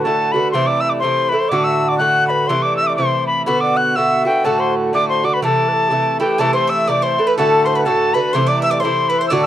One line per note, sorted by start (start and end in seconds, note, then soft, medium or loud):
0.03 0.35 A2 medium
0.03 0.35 D3 medium
0.03 0.34 A3 medium
0.03 0.36 A4 medium
0.03 0.33 A5 medium
0.07 0.33 F#4 medium
0.32 0.54 A3 soft
0.32 0.54 F#4 medium
0.32 0.52 B4 medium
0.32 0.51 B5 medium
0.36 0.54 D3 soft
0.51 1.01 C3 medium
0.51 1.02 E3 medium
0.51 1.03 A3 medium
0.51 0.69 C5 medium
0.51 0.68 C6 medium
0.55 1.03 E4 medium
0.66 0.84 D5 medium
0.66 0.82 D6 medium
0.80 0.93 E5 medium
0.80 0.91 E6 medium
0.89 1.02 D5 medium
0.89 0.91 D6 medium
1.00 1.32 C3 medium
1.00 1.32 E3 medium
1.00 1.32 A3 medium
1.00 1.30 C5 medium
1.00 1.31 C6 medium
1.04 1.31 E4 medium
1.29 1.52 E4 medium
1.29 1.39 B4 medium
1.29 1.41 B5 loud
1.33 1.51 E3 soft
1.33 1.51 A3 soft
1.39 1.50 C5 medium
1.39 1.50 C6 medium
1.49 1.98 A2 medium
1.49 1.99 D3 medium
1.49 2.00 A3 medium
1.49 2.00 F#4 medium
1.49 1.67 D5 medium
1.49 1.65 D6 loud
1.64 1.90 E5 medium
1.64 1.90 E6 medium
1.89 2.02 D5 medium
1.89 1.97 D6 medium
1.98 2.49 A2 medium
1.98 2.49 D3 medium
1.98 2.49 A3 medium
1.98 2.50 F#4 medium
1.98 2.32 F#5 medium
1.98 2.27 F#6 medium
2.27 2.49 B4 medium
2.27 2.49 B5 medium
2.47 2.97 C3 medium
2.47 2.97 E3 medium
2.47 2.99 A3 medium
2.47 2.99 E4 medium
2.47 2.50 D5 medium
2.47 2.64 C6 medium
2.62 2.80 D5 medium
2.62 2.76 D6 medium
2.77 2.91 E5 medium
2.77 2.88 E6 medium
2.87 3.00 D5 medium
2.87 2.96 D6 medium
2.96 3.46 C3 medium
2.96 3.46 E3 medium
2.96 3.47 A3 medium
2.96 3.47 E4 medium
2.96 3.26 C5 medium
2.96 3.25 C6 medium
3.27 3.45 B5 medium
3.46 3.95 B2 medium
3.46 3.96 D3 medium
3.46 3.96 B3 medium
3.46 3.96 F#4 medium
3.46 3.61 B4 medium
3.46 3.62 B5 medium
3.61 3.78 D5 medium
3.61 3.78 D6 medium
3.77 3.98 F#5 medium
3.77 3.97 F#6 medium
3.96 4.25 B2 medium
3.96 4.26 D3 medium
3.96 4.25 B3 medium
3.96 4.24 F#4 medium
3.96 4.46 E5 medium
3.96 4.25 E6 medium
4.25 4.44 D3 soft
4.25 4.45 B3 soft
4.25 4.44 F#4 soft
4.25 4.47 G5 medium
4.45 4.92 A2 medium
4.45 4.93 D3 medium
4.45 4.94 A3 medium
4.45 4.94 F#4 medium
4.45 4.60 A4 medium
4.45 4.62 A5 medium
4.59 4.74 C5 medium
4.59 4.74 C6 medium
4.93 5.23 A2 medium
4.93 5.23 D3 medium
4.93 5.23 A3 medium
4.93 5.22 F#4 medium
4.93 5.07 D5 medium
4.93 5.08 D6 medium
5.09 5.25 C5 medium
5.09 5.26 C6 medium
5.23 5.42 D3 soft
5.23 5.42 A3 soft
5.23 5.42 F#4 soft
5.23 5.33 D5 medium
5.23 5.35 D6 medium
5.34 5.43 B4 medium
5.34 5.43 B5 medium
5.42 5.89 C3 medium
5.42 5.90 E3 medium
5.42 5.91 A3 medium
5.42 5.91 E4 medium
5.42 5.70 A4 medium
5.42 6.17 A5 medium
5.69 5.75 B4 soft
5.73 5.90 A4 medium
5.88 6.20 C3 medium
5.88 6.21 E3 medium
5.88 6.20 A3 medium
5.88 6.19 E4 medium
5.88 5.95 G4 soft
5.94 6.22 A4 medium
6.20 6.39 E3 soft
6.20 6.39 A3 medium
6.20 6.39 E4 medium
6.20 6.38 G4 medium
6.20 6.43 G4 medium
6.20 6.41 G5 medium
6.38 6.87 C3 medium
6.38 6.88 E3 medium
6.38 6.89 A3 medium
6.38 6.89 E4 medium
6.38 6.53 A4 medium
6.38 6.57 A4 medium
6.38 6.54 A5 medium
6.53 6.69 C5 medium
6.53 6.72 C5 medium
6.53 6.71 C6 medium
6.67 6.86 E5 medium
6.67 6.91 E5 medium
6.67 6.90 E6 medium
6.87 7.18 C3 medium
6.87 7.18 E3 medium
6.87 7.18 A3 medium
6.87 7.17 E4 medium
6.87 7.02 D5 medium
6.87 7.07 D5 medium
6.87 7.04 D6 medium
7.02 7.26 C5 medium
7.02 7.29 C5 medium
7.02 7.29 C6 medium
7.18 7.38 E3 soft
7.18 7.38 A3 soft
7.18 7.37 E4 soft
7.27 7.36 B4 medium
7.27 7.37 B4 medium
7.27 7.36 B5 medium
7.37 7.84 A2 medium
7.37 7.85 D3 medium
7.37 7.86 A3 medium
7.37 7.86 F#4 medium
7.37 7.65 A4 medium
7.37 7.69 A4 medium
7.37 7.66 A5 loud
7.65 7.75 C5 medium
7.65 7.76 C5 medium
7.65 7.77 C6 medium
7.75 7.85 B4 medium
7.75 7.88 B4 medium
7.75 7.83 B5 medium
7.84 8.15 A2 medium
7.84 8.15 D3 medium
7.84 8.15 A3 medium
7.84 8.14 F#4 medium
7.84 8.13 A4 medium
7.84 8.15 A4 medium
7.84 8.15 A5 loud
8.14 8.34 D3 soft
8.14 8.34 A3 medium
8.14 8.34 F#4 soft
8.14 8.33 B4 medium
8.14 8.37 B4 medium
8.14 8.34 B5 medium
8.33 8.82 C3 medium
8.33 8.83 E3 medium
8.33 8.84 A3 medium
8.33 8.84 E4 medium
8.33 8.46 C5 medium
8.33 8.51 C5 medium
8.33 8.49 C6 medium
8.46 8.62 D5 medium
8.46 8.66 D5 medium
8.46 8.62 D6 medium
8.62 8.72 E5 medium
8.62 8.75 E5 medium
8.62 8.72 E6 medium
8.70 8.79 D5 medium
8.70 8.84 D5 medium
8.70 8.82 D6 medium
8.80 9.31 C3 medium
8.80 9.31 E3 medium
8.80 9.09 C5 medium
8.80 9.12 C5 medium
8.80 9.10 C6 medium
8.84 9.31 A3 medium
8.84 9.32 E4 medium
9.09 9.20 B4 medium
9.09 9.24 B4 medium
9.09 9.20 B5 medium
9.19 9.30 C5 medium
9.19 9.32 C5 medium
9.19 9.29 C6 medium
9.28 9.46 A2 medium
9.28 9.46 D3 medium
9.28 9.45 D5 medium
9.28 9.31 E6 medium
9.32 9.46 A3 medium
9.32 9.46 F#4 medium
9.32 9.46 D5 medium
9.43 9.46 E6 medium